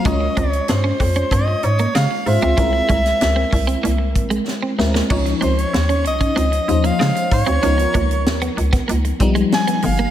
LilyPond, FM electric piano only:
\new Staff \with { instrumentName = "FM electric piano" } { \time 4/4 \key des \lydian \tempo 4 = 95 <aes des' f' des''>4. r2 <aes des' f' c''>8 | <aes c' e' bes'>4. r2 <aes c' e' bes'>8 | <f des' ees' des''>4. r4 <f des' ees' c''>4 r8 | <f ces' ees' bes'>4. r4 <f g ces' ees'>4 r8 | }